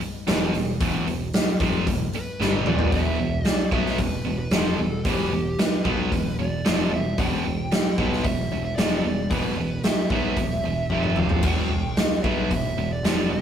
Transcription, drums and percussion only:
0.01 open hi-hat medium
0.27 snare loud
0.27 open hi-hat medium
0.54 open hi-hat medium
0.80 kick loud
0.80 open hi-hat medium
1.07 open hi-hat medium
1.33 snare loud
1.33 open hi-hat medium
1.60 kick loud
1.60 open hi-hat medium
1.87 kick medium
1.87 open hi-hat medium
2.13 open hi-hat medium
2.41 snare medium
2.53 high tom medium
2.66 mid tom medium
2.79 floor tom medium
2.92 kick loud
2.92 open hi-hat soft
3.44 snare loud
3.44 open hi-hat medium
3.72 kick medium
3.86 snare soft
3.98 kick medium
3.98 open hi-hat medium
4.50 snare loud
4.50 open hi-hat medium
5.04 kick loud
5.04 open hi-hat medium
5.58 snare loud
5.58 open hi-hat soft
5.85 kick loud
6.12 kick medium
6.12 open hi-hat medium
6.65 snare loud
6.65 open hi-hat soft
7.18 kick loud
7.18 open hi-hat medium
7.71 snare loud
7.71 open hi-hat medium
7.98 kick loud
8.12 snare soft
8.24 kick medium
8.24 open hi-hat medium
8.78 snare loud
8.78 open hi-hat medium
9.31 kick loud
9.31 open hi-hat medium
9.83 snare loud
9.83 open hi-hat medium
10.10 kick loud
10.36 kick medium
10.36 open hi-hat medium
10.90 kick medium
11.03 mid tom medium
11.16 mid tom medium
11.29 floor tom medium
11.43 kick loud
11.43 open hi-hat medium
11.43 crash medium
11.96 snare loud
11.96 open hi-hat soft
12.24 kick loud
12.51 kick medium
12.51 open hi-hat medium
13.04 snare loud
13.04 open hi-hat medium

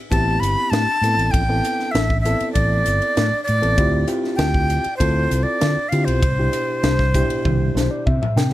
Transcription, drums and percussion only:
0.12 kick medium
0.12 ride medium
0.43 hi-hat pedal medium
0.43 ride medium
0.73 snare loud
0.73 ride medium
1.04 hi-hat pedal medium
1.04 ride medium
1.19 ride medium
1.34 kick medium
1.34 ride medium
1.65 hi-hat pedal medium
1.65 ride medium
1.80 snare soft
1.95 snare loud
1.95 ride medium
2.10 kick medium
2.25 hi-hat pedal medium
2.25 ride medium
2.40 ride medium
2.55 kick medium
2.55 ride medium
2.86 hi-hat pedal medium
2.86 ride medium
3.02 ride soft
3.17 snare loud
3.17 ride medium
3.47 hi-hat pedal medium
3.47 ride medium
3.63 ride medium
3.78 kick loud
3.78 ride medium
4.08 hi-hat pedal medium
4.08 ride medium
4.24 snare soft
4.39 snare loud
4.39 ride medium
4.54 kick medium
4.70 hi-hat pedal medium
4.70 ride medium
4.84 ride medium
5.00 kick medium
5.00 ride medium
5.31 hi-hat pedal medium
5.31 ride medium
5.61 snare loud
5.61 ride medium
5.92 hi-hat pedal medium
5.92 ride medium
6.08 ride medium
6.23 kick loud
6.23 ride medium
6.53 hi-hat pedal medium
6.53 ride medium
6.83 snare loud
6.83 ride medium
6.99 kick medium
6.99 snare soft
7.14 kick medium
7.14 hi-hat pedal medium
7.14 ride medium
7.30 ride medium
7.45 kick medium
7.45 high tom medium
7.77 snare medium
7.77 hi-hat pedal medium
8.07 kick medium
8.23 mid tom medium
8.37 snare medium
8.37 hi-hat pedal medium

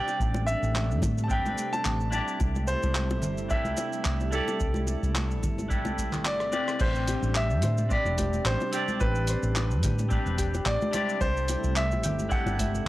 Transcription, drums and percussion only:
0.08 high bongo soft
0.08 cabasa soft
0.20 kick loud
0.20 cabasa soft
0.34 high bongo medium
0.34 high conga medium
0.34 cabasa soft
0.47 cabasa medium
0.63 cabasa soft
0.74 clap medium
0.74 high bongo soft
0.74 high conga medium
0.74 cabasa soft
0.91 cabasa soft
1.02 kick medium
1.02 high bongo medium
1.02 low conga medium
1.02 cabasa medium
1.18 high conga medium
1.18 cabasa soft
1.30 kick loud
1.30 cabasa soft
1.45 high bongo soft
1.45 high conga medium
1.45 cabasa soft
1.58 cabasa medium
1.73 high bongo medium
1.73 cabasa soft
1.85 clap medium
1.85 cabasa soft
2.00 cabasa soft
2.12 high bongo medium
2.12 cabasa medium
2.28 cabasa soft
2.40 kick loud
2.40 high bongo medium
2.40 cabasa soft
2.55 high conga medium
2.55 cabasa soft
2.67 cabasa medium
2.83 high bongo soft
2.83 cabasa soft
2.95 clap loud
2.95 high conga medium
2.95 cabasa soft
3.10 high bongo medium
3.10 cabasa soft
3.22 low conga medium
3.22 cabasa medium
3.37 cabasa soft
3.50 kick loud
3.50 high bongo soft
3.50 cabasa soft
3.65 high conga medium
3.65 cabasa soft
3.77 high bongo medium
3.77 cabasa medium
3.93 cabasa soft
4.05 clap medium
4.05 cabasa soft
4.20 high bongo medium
4.20 cabasa soft
4.32 cabasa medium
4.48 high bongo medium
4.48 cabasa soft
4.60 kick loud
4.60 cabasa soft
4.74 high conga medium
4.74 cabasa soft
4.87 high bongo medium
4.87 cabasa medium
5.03 cabasa soft
5.15 clap loud
5.15 high bongo medium
5.15 high conga medium
5.15 cabasa soft
5.31 cabasa soft
5.43 kick medium
5.43 low conga medium
5.43 cabasa medium
5.58 high bongo soft
5.58 high conga medium
5.58 cabasa soft
5.71 kick loud
5.71 cabasa soft
5.85 high bongo medium
5.85 high conga medium
5.85 cabasa soft
5.98 kick medium
5.98 cabasa medium
6.12 clap soft
6.12 low conga medium
6.12 cabasa soft
6.25 cross-stick medium
6.25 clap loud
6.25 high bongo medium
6.25 cabasa soft
6.40 cross-stick medium
6.40 cabasa soft
6.52 high bongo medium
6.52 cabasa medium
6.68 cross-stick medium
6.68 cabasa soft
6.80 kick loud
6.80 crash loud
6.80 cabasa soft
6.95 cabasa soft
7.08 closed hi-hat medium
7.08 high bongo medium
7.08 cabasa medium
7.23 cabasa soft
7.35 clap loud
7.35 cabasa soft
7.50 cabasa soft
7.62 closed hi-hat medium
7.62 high bongo medium
7.62 low conga medium
7.62 cabasa medium
7.78 high conga medium
7.78 cabasa soft
7.90 kick loud
7.90 cabasa soft
8.06 high bongo soft
8.06 cabasa soft
8.18 kick medium
8.18 closed hi-hat medium
8.18 high conga medium
8.18 cabasa medium
8.33 high conga medium
8.33 cabasa soft
8.45 clap loud
8.45 cabasa soft
8.60 high bongo medium
8.60 cabasa soft
8.73 closed hi-hat loud
8.73 cabasa medium
8.88 high conga medium
8.88 cabasa soft
9.00 kick loud
9.00 high bongo medium
9.00 cabasa soft
9.15 cabasa soft
9.27 closed hi-hat medium
9.27 cabasa medium
9.43 cabasa soft
9.55 clap loud
9.55 high bongo medium
9.55 cabasa soft
9.71 cabasa soft
9.83 kick loud
9.83 closed hi-hat medium
9.83 low conga medium
9.83 cabasa medium
9.98 high bongo medium
9.98 high conga medium
9.98 cabasa soft
10.10 kick loud
10.10 cabasa soft
10.26 cabasa soft
10.38 kick medium
10.38 closed hi-hat medium
10.38 cabasa medium
10.54 high bongo medium
10.54 cabasa soft
10.66 clap loud
10.66 cabasa soft
10.81 high conga medium
10.81 cabasa soft
10.93 closed hi-hat medium
10.93 high bongo medium
10.93 high conga medium
10.93 cabasa medium
11.09 cabasa soft
11.21 kick loud
11.21 cabasa soft
11.37 cabasa soft
11.48 closed hi-hat medium
11.48 high bongo medium
11.48 cabasa medium
11.64 cabasa soft
11.76 clap loud
11.76 cabasa soft
11.91 high bongo medium
11.91 cabasa soft
12.03 closed hi-hat medium
12.03 low conga medium
12.03 cabasa medium
12.19 high conga medium
12.19 cabasa soft
12.31 kick loud
12.31 cabasa soft
12.47 high bongo medium
12.47 cabasa soft
12.59 kick medium
12.59 closed hi-hat medium
12.59 high conga medium
12.59 cabasa medium
12.75 high conga medium
12.75 cabasa soft

